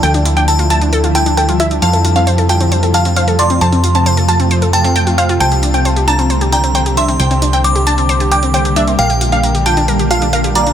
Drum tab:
HH |xxxxxxxxxxxxxxxx|xxxxxxxxxxxxxxxx|xxxxxxxxxxxxxxxx|xxxxxxxxxxxxxxxx|

HH |xxxxxxxxxxxxxxxx|xxxxxxxxxxxxxxxx|